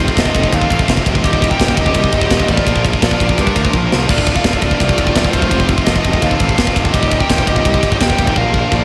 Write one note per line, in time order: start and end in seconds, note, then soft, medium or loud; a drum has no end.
0.03 0.10 F2 medium
0.03 0.14 C3 medium
0.03 0.11 C4 medium
0.03 0.11 F4 medium
0.08 0.18 F2 medium
0.08 0.19 C4 medium
0.08 0.19 F4 medium
0.08 kick medium
0.14 0.30 F1 medium
0.14 0.21 C3 loud
0.14 0.54 D#5 medium
0.14 kick medium
0.14 ride loud
0.18 0.27 F2 medium
0.18 0.29 C3 medium
0.18 0.26 C4 medium
0.18 0.27 F4 medium
0.18 0.51 A4 medium
0.18 snare loud
0.25 0.34 F2 medium
0.25 0.34 C4 medium
0.25 0.34 F4 medium
0.25 kick medium
0.31 0.42 F2 medium
0.31 0.38 C3 loud
0.31 0.41 C4 medium
0.35 0.47 F1 medium
0.35 0.46 C3 medium
0.35 0.42 F4 medium
0.35 kick medium
0.35 ride medium
0.42 0.49 F2 medium
0.42 0.49 C4 medium
0.42 0.50 F4 medium
0.42 kick medium
0.46 0.56 F2 medium
0.46 0.54 C3 medium
0.46 0.56 C4 medium
0.51 0.65 D#2 loud
0.51 0.61 C3 medium
0.51 0.56 F4 medium
0.51 0.87 F5 medium
0.51 kick medium
0.51 ride loud
0.56 0.64 F2 medium
0.56 0.64 C4 medium
0.56 0.64 F4 medium
0.56 0.88 A4 medium
0.61 0.72 F2 medium
0.61 0.69 C3 medium
0.61 0.71 C4 medium
0.61 0.72 F4 medium
0.61 kick medium
0.69 0.83 A1 medium
0.69 0.79 F2 medium
0.69 0.77 C3 medium
0.69 0.79 C4 medium
0.69 0.79 F4 medium
0.69 kick medium
0.69 ride medium
0.78 0.86 F2 medium
0.78 0.84 C3 medium
0.78 0.86 C4 medium
0.78 0.87 F4 medium
0.78 kick medium
0.85 1.01 F1 loud
0.85 0.93 F2 medium
0.85 0.92 C3 medium
0.85 0.93 C4 medium
0.85 kick medium
0.89 0.94 F4 medium
0.89 snare loud
0.89 ride loud
0.93 1.01 F2 medium
0.93 1.00 C3 medium
0.93 1.01 C4 medium
0.93 1.02 F4 medium
0.93 kick medium
1.00 1.09 F2 medium
1.00 1.08 C3 medium
1.00 1.09 C4 medium
1.00 1.09 F4 medium
1.06 1.18 D1 medium
1.06 1.16 F2 medium
1.06 1.16 C3 medium
1.06 1.16 C4 medium
1.06 1.16 F4 medium
1.06 kick medium
1.06 ride medium
1.15 1.22 F2 medium
1.15 1.23 C3 medium
1.15 1.24 C4 medium
1.15 1.24 F4 medium
1.15 kick medium
1.23 1.48 D#1 medium
1.23 1.30 D#2 medium
1.23 1.32 A#2 loud
1.23 1.32 G3 medium
1.23 1.32 G4 loud
1.23 1.51 D#5 loud
1.23 kick medium
1.23 ride loud
1.30 1.38 D#2 medium
1.30 1.39 A#2 medium
1.30 1.39 G3 medium
1.30 1.41 G4 medium
1.30 kick medium
1.38 1.45 D#2 medium
1.38 1.47 A#2 medium
1.38 1.47 G3 medium
1.38 1.48 G4 medium
1.38 kick medium
1.44 1.52 D#2 medium
1.44 1.54 G3 medium
1.44 ride medium
1.48 1.55 A#2 medium
1.48 1.56 G4 medium
1.48 1.76 A#4 medium
1.48 1.78 G5 loud
1.48 kick medium
1.52 1.60 D#2 medium
1.52 1.62 A#2 medium
1.52 1.61 G3 medium
1.57 1.72 D#1 medium
1.57 1.67 D#2 medium
1.57 1.64 G4 medium
1.57 kick medium
1.57 ride loud
1.61 1.69 A#2 medium
1.61 1.69 G3 medium
1.61 1.71 G4 medium
1.61 snare loud
1.67 1.75 D#2 medium
1.67 1.78 A#2 medium
1.67 1.76 G3 medium
1.67 kick medium
1.71 1.82 D#2 medium
1.71 1.79 G4 medium
1.71 2.21 D#5 medium
1.77 1.90 D#1 loud
1.77 1.86 A#2 medium
1.77 1.84 G3 medium
1.77 kick medium
1.77 ride medium
1.81 1.90 D#2 medium
1.81 1.91 G3 medium
1.81 1.88 G4 medium
1.86 1.94 A#2 medium
1.86 1.96 G4 medium
1.86 kick medium
1.90 1.98 D#2 medium
1.90 1.99 G3 medium
1.94 2.07 C2 loud
1.94 2.02 A#2 medium
1.94 2.03 G4 medium
1.94 kick medium
1.94 ride loud
1.99 2.05 D#2 medium
1.99 2.09 A#2 medium
1.99 2.06 G3 medium
1.99 2.10 G4 medium
2.04 2.12 D#2 medium
2.04 2.14 G3 medium
2.04 kick medium
2.10 2.25 G1 medium
2.10 2.20 D#2 medium
2.10 2.17 A#2 medium
2.10 2.19 G4 medium
2.10 kick medium
2.10 ride medium
2.14 2.22 G3 medium
2.19 2.27 D#2 medium
2.19 2.26 A#2 medium
2.19 2.29 G3 medium
2.19 2.27 G4 medium
2.19 2.49 D#5 medium
2.19 kick medium
2.26 2.35 D#2 medium
2.26 2.33 A#2 medium
2.26 2.37 G3 medium
2.26 2.35 G4 medium
2.31 2.43 D#1 loud
2.31 2.40 A#2 medium
2.31 kick medium
2.31 snare loud
2.31 ride loud
2.35 2.43 D#2 medium
2.35 2.44 G3 medium
2.35 2.42 G4 medium
2.40 2.50 D#2 medium
2.40 2.49 A#2 medium
2.40 2.51 G4 medium
2.40 kick medium
2.45 2.52 G3 medium
2.45 kick medium
2.45 ride medium
2.49 2.61 A1 medium
2.49 2.58 D#2 medium
2.49 2.58 A#2 medium
2.49 2.58 G3 medium
2.49 2.84 F4 medium
2.49 2.58 G4 medium
2.49 2.82 D5 medium
2.57 2.66 D#2 medium
2.57 2.66 A#2 medium
2.57 2.66 G3 medium
2.57 2.66 G4 medium
2.57 kick medium
2.67 2.91 A#1 loud
2.67 2.73 A#2 medium
2.67 2.75 F3 loud
2.67 2.73 F4 medium
2.67 2.75 A#4 medium
2.67 kick medium
2.67 ride loud
2.74 2.81 A#2 medium
2.74 2.83 F3 medium
2.74 2.82 F4 medium
2.74 2.82 A#4 medium
2.74 kick medium
2.82 2.88 A#2 medium
2.82 2.90 F3 loud
2.82 2.90 F4 medium
2.82 2.90 A#4 medium
2.82 kick medium
2.82 ride medium
2.89 2.96 A#2 medium
2.89 2.98 F3 medium
2.89 2.98 F4 medium
2.89 2.98 A#4 medium
2.93 3.04 A#2 medium
2.93 kick medium
2.98 3.14 A#1 medium
2.98 3.06 F3 loud
2.98 3.06 F4 medium
2.98 3.06 A#4 medium
2.98 kick medium
2.98 ride loud
3.03 3.12 A#2 medium
3.03 3.14 F4 medium
3.03 3.14 A#4 medium
3.03 3.40 D5 medium
3.03 snare loud
3.07 3.14 F3 medium
3.11 3.18 A#2 medium
3.11 3.22 F3 loud
3.11 3.22 F4 medium
3.11 3.22 A#4 medium
3.11 kick medium
3.19 3.33 A#1 medium
3.19 3.26 A#2 medium
3.19 3.30 F3 medium
3.19 3.29 F4 medium
3.19 3.30 A#4 medium
3.19 kick medium
3.19 ride medium
3.26 3.34 A#2 medium
3.26 3.37 F3 loud
3.26 3.37 F4 medium
3.26 kick medium
3.31 3.41 A#2 medium
3.31 3.39 A#4 medium
3.38 3.50 G2 medium
3.38 3.45 F3 medium
3.38 3.73 D4 medium
3.38 3.46 F4 medium
3.38 3.46 A#4 medium
3.38 3.73 A#4 medium
3.38 kick medium
3.38 ride loud
3.42 3.49 A#2 medium
3.46 3.53 F3 loud
3.46 3.53 F4 medium
3.46 3.53 A#4 medium
3.46 kick medium
3.50 3.56 A#2 medium
3.50 3.62 F3 medium
3.50 3.61 F4 medium
3.50 3.62 A#4 medium
3.56 3.68 D2 medium
3.56 3.63 A#2 medium
3.56 kick medium
3.56 ride medium
3.62 3.71 A#2 medium
3.62 3.69 F3 loud
3.62 3.69 F4 medium
3.62 3.69 A#4 medium
3.62 kick medium
3.69 3.78 A#2 medium
3.69 3.77 F3 medium
3.69 3.77 F4 medium
3.69 3.77 A#4 medium
3.73 3.86 A#1 medium
3.73 3.85 F3 loud
3.73 3.84 F4 medium
3.73 kick medium
3.78 3.86 A#2 medium
3.78 3.85 A#4 medium
3.85 3.93 A#2 medium
3.85 3.93 F3 medium
3.85 3.93 F4 medium
3.85 3.93 A#4 medium
3.92 4.05 C2 medium
3.92 4.00 A#2 medium
3.92 4.01 F3 medium
3.92 4.00 F4 medium
3.92 4.01 A#4 medium
3.92 snare medium
4.01 4.08 A#2 medium
4.01 4.09 F3 medium
4.01 4.09 F4 medium
4.01 4.09 A#4 medium
4.08 4.33 D1 medium
4.08 4.16 D2 medium
4.08 4.18 A2 loud
4.08 4.15 A3 medium
4.08 4.17 F4 loud
4.08 4.37 D5 loud
4.08 kick loud
4.08 crash loud
4.16 4.23 D2 medium
4.16 4.25 A2 medium
4.16 4.22 A3 medium
4.16 4.25 F4 medium
4.16 kick medium
4.23 4.31 D2 medium
4.23 4.34 A2 medium
4.23 4.30 A3 medium
4.23 4.33 F4 medium
4.23 kick medium
4.23 ride medium
4.31 4.38 D2 medium
4.31 4.41 A2 medium
4.31 4.38 A3 medium
4.31 4.41 F4 medium
4.35 4.46 D2 medium
4.35 4.61 A4 medium
4.35 4.63 F5 loud
4.35 kick medium
4.40 4.48 A2 medium
4.40 4.46 A3 medium
4.40 4.49 F4 medium
4.40 kick medium
4.40 ride loud
4.45 4.57 D1 medium
4.45 4.53 D2 medium
4.45 4.53 A3 medium
4.45 snare loud
4.49 4.57 A2 medium
4.49 4.56 F4 medium
4.53 4.60 D2 medium
4.53 4.60 A3 medium
4.53 4.64 F4 medium
4.53 kick medium
4.57 4.68 D2 medium
4.57 4.63 A2 medium
4.57 4.69 A3 medium
4.57 5.03 D5 loud
4.62 4.74 D1 loud
4.62 4.72 A2 medium
4.62 4.72 F4 medium
4.62 kick medium
4.62 ride medium
4.69 4.76 D2 medium
4.69 4.75 A3 medium
4.69 4.79 F4 medium
4.69 kick medium
4.73 4.84 D2 medium
4.73 4.80 A2 loud
4.73 4.82 A3 medium
4.79 4.92 C2 loud
4.79 4.88 A2 medium
4.79 4.87 F4 medium
4.79 kick medium
4.79 ride loud
4.84 4.91 D2 medium
4.84 4.91 A3 medium
4.84 4.95 F4 loud
4.89 4.98 D2 medium
4.89 4.96 A2 loud
4.89 4.98 A3 medium
4.89 kick loud
4.95 5.10 F1 medium
4.95 5.06 D2 medium
4.95 5.04 A2 medium
4.95 5.06 A3 medium
4.95 5.03 F4 medium
4.95 kick medium
4.95 ride medium
5.03 5.13 D2 medium
5.03 5.12 A2 loud
5.03 5.12 A3 medium
5.03 5.10 F4 medium
5.03 5.30 D5 loud
5.03 kick medium
5.11 5.21 D2 medium
5.11 5.19 A2 medium
5.11 5.20 A3 medium
5.11 5.18 F4 medium
5.16 5.28 D1 loud
5.16 5.27 A2 medium
5.16 5.25 F4 medium
5.16 kick loud
5.16 snare loud
5.16 ride loud
5.20 5.28 D2 medium
5.20 5.28 A3 medium
5.24 5.36 D2 medium
5.24 5.35 A2 medium
5.24 5.36 A3 medium
5.24 5.33 F4 medium
5.24 kick medium
5.32 5.46 D1 medium
5.32 5.43 A2 medium
5.32 5.41 F4 medium
5.32 5.66 C5 medium
5.32 kick medium
5.32 ride medium
5.36 5.44 D2 medium
5.36 5.44 A3 medium
5.41 5.51 D2 medium
5.41 5.52 A2 medium
5.41 5.51 A3 medium
5.41 5.49 F4 medium
5.41 kick medium
5.51 5.75 F1 medium
5.51 5.58 F2 medium
5.51 5.60 C3 medium
5.51 5.58 C4 medium
5.51 5.58 F4 loud
5.51 kick medium
5.51 ride loud
5.59 5.66 F2 medium
5.59 5.67 C3 medium
5.59 5.65 C4 medium
5.59 5.66 F4 medium
5.59 kick medium
5.66 5.73 F2 medium
5.66 5.75 C3 medium
5.66 5.71 C4 medium
5.66 5.73 F4 medium
5.66 kick medium
5.66 ride medium
5.72 5.80 F2 medium
5.72 5.79 C4 medium
5.72 5.81 F4 medium
5.77 5.88 F2 medium
5.77 5.83 C3 medium
5.77 kick medium
5.81 5.90 C3 medium
5.81 5.87 C4 medium
5.81 5.88 F4 medium
5.81 6.22 D#5 medium
5.86 5.99 F1 medium
5.86 5.95 F2 medium
5.86 5.94 C4 medium
5.86 5.96 F4 medium
5.86 6.20 A4 medium
5.86 kick medium
5.86 snare loud
5.86 ride loud
5.90 5.98 C3 medium
5.95 6.03 F2 medium
5.95 6.02 C4 medium
5.95 6.04 F4 medium
5.95 kick medium
5.99 6.07 C3 medium
6.03 6.17 F1 medium
6.03 6.11 F2 medium
6.03 6.10 C4 medium
6.03 6.11 F4 medium
6.03 kick medium
6.03 ride medium
6.07 6.15 C3 medium
6.07 6.18 C4 medium
6.07 6.18 F4 medium
6.11 6.17 F2 medium
6.11 kick medium
6.16 6.25 F2 medium
6.16 6.23 C3 medium
6.16 6.26 C4 medium
6.16 6.26 F4 medium
6.22 6.34 D#2 medium
6.22 6.33 F2 medium
6.22 6.31 C3 medium
6.22 6.57 A4 medium
6.22 6.55 F5 medium
6.22 kick medium
6.22 ride loud
6.26 6.33 C4 medium
6.26 6.34 F4 medium
6.31 6.40 F2 medium
6.31 6.38 C3 loud
6.31 6.40 C4 medium
6.31 6.42 F4 medium
6.31 kick medium
6.39 6.53 A1 loud
6.39 6.48 F2 medium
6.39 6.46 C3 medium
6.39 6.47 C4 medium
6.39 6.49 F4 medium
6.39 kick medium
6.39 ride medium
6.47 6.55 F2 medium
6.47 6.54 C3 medium
6.47 6.55 C4 medium
6.47 6.56 F4 medium
6.47 kick medium
6.55 6.70 F1 medium
6.55 6.63 F2 medium
6.55 6.63 C3 medium
6.55 6.63 C4 medium
6.55 6.63 F4 medium
6.55 kick medium
6.55 snare loud
6.55 ride loud
6.63 6.71 F2 medium
6.63 6.70 C3 medium
6.63 6.70 C4 medium
6.63 6.71 F4 medium
6.63 kick medium
6.70 6.79 F2 medium
6.70 6.78 C3 medium
6.70 6.77 C4 medium
6.70 6.78 F4 medium
6.76 6.89 F1 medium
6.76 6.86 F2 medium
6.76 6.85 C3 medium
6.76 6.85 C4 medium
6.76 6.85 F4 medium
6.76 kick medium
6.76 ride medium
6.85 6.93 F2 medium
6.85 6.94 C3 medium
6.85 6.93 C4 medium
6.85 6.93 F4 medium
6.85 kick medium
6.92 7.18 D#1 loud
6.92 7.01 D#2 medium
6.92 7.00 A#2 loud
6.92 7.00 G3 medium
6.92 7.01 G4 loud
6.92 7.21 D#5 loud
6.92 kick medium
6.92 ride loud
7.01 7.08 D#2 medium
7.01 7.08 A#2 medium
7.01 7.08 G3 medium
7.01 7.09 G4 medium
7.01 kick medium
7.08 7.16 D#2 medium
7.08 7.18 A#2 medium
7.08 7.14 G3 medium
7.08 7.18 G4 medium
7.08 kick medium
7.08 ride medium
7.14 7.23 D#2 medium
7.14 7.21 G3 medium
7.18 7.25 A#2 medium
7.18 7.24 G4 medium
7.18 7.45 A#4 medium
7.18 7.48 G5 loud
7.18 kick medium
7.23 7.30 D#2 medium
7.23 7.33 A#2 medium
7.23 7.30 G3 medium
7.23 7.33 G4 medium
7.30 7.42 D#1 loud
7.30 7.38 D#2 medium
7.30 7.41 A#2 medium
7.30 7.38 G3 medium
7.30 kick medium
7.30 snare loud
7.30 ride loud
7.34 7.41 G4 medium
7.38 7.46 D#2 medium
7.38 7.49 A#2 medium
7.38 7.46 G3 medium
7.38 7.50 G4 medium
7.38 kick medium
7.47 7.59 D#1 loud
7.47 7.53 D#2 medium
7.47 7.56 A#2 medium
7.47 7.53 G3 medium
7.47 7.56 G4 medium
7.47 7.92 D#5 loud
7.47 kick medium
7.47 ride medium
7.53 7.61 D#2 medium
7.53 7.64 A#2 medium
7.53 7.60 G3 medium
7.53 7.64 G4 medium
7.53 kick medium
7.60 7.68 D#2 medium
7.60 7.68 G3 medium
7.65 7.78 C2 loud
7.65 7.72 A#2 medium
7.65 7.73 G4 medium
7.65 kick medium
7.65 ride loud
7.69 7.76 D#2 medium
7.69 7.80 A#2 medium
7.69 7.76 G3 medium
7.74 7.84 D#2 medium
7.74 7.83 G3 medium
7.74 7.80 G4 medium
7.74 kick loud
7.81 7.95 G1 loud
7.81 7.87 A#2 medium
7.81 7.90 G3 medium
7.81 7.89 G4 medium
7.81 kick medium
7.81 ride medium
7.85 7.90 D#2 medium
7.85 7.95 A#2 medium
7.89 7.98 D#2 medium
7.89 7.98 G3 medium
7.89 7.96 G4 medium
7.89 8.01 D#5 medium
7.89 kick medium
7.96 8.06 D#2 medium
7.96 8.03 A#2 medium
7.96 8.05 G3 medium
7.96 8.04 G4 medium
8.01 8.13 D#1 medium
8.01 8.12 G4 medium
8.01 8.35 A#4 medium
8.01 8.37 G5 loud
8.01 kick medium
8.01 snare loud
8.01 ride loud
8.05 8.12 D#2 medium
8.05 8.11 A#2 medium
8.05 8.13 G3 medium
8.10 8.20 D#2 medium
8.10 8.20 A#2 medium
8.10 8.20 G4 medium
8.10 kick medium
8.14 8.21 G3 medium
8.18 8.31 D#1 medium
8.18 8.29 D#2 medium
8.18 8.28 A#2 medium
8.18 8.28 G3 medium
8.18 8.28 G4 medium
8.18 kick medium
8.18 ride medium
8.27 8.36 D#2 medium
8.27 8.36 A#2 medium
8.27 8.36 G3 medium
8.27 8.37 G4 medium
8.27 kick loud
8.36 8.60 A#1 medium
8.36 8.44 A#2 medium
8.36 8.46 F3 loud
8.36 8.44 F4 loud
8.36 8.45 A#4 loud
8.36 8.73 F5 loud
8.36 kick medium
8.45 8.51 A#2 medium
8.45 8.52 F3 medium
8.45 8.53 F4 medium
8.45 8.53 A#4 medium
8.52 8.60 A#2 medium
8.52 8.60 F3 medium
8.52 8.60 F4 medium
8.52 8.62 A#4 loud
8.52 kick medium
8.60 8.68 A#2 medium
8.60 8.69 F3 medium
8.60 8.68 F4 medium
8.60 8.68 A#4 medium
8.68 8.84 A#1 medium
8.68 8.75 A#2 medium
8.68 8.77 F3 loud
8.68 8.76 F4 medium
8.68 8.76 A#4 loud
8.68 kick medium
8.74 8.83 A#2 medium
8.74 8.84 F3 medium
8.74 8.83 F4 medium
8.74 8.84 A#4 medium
8.74 8.84 D5 medium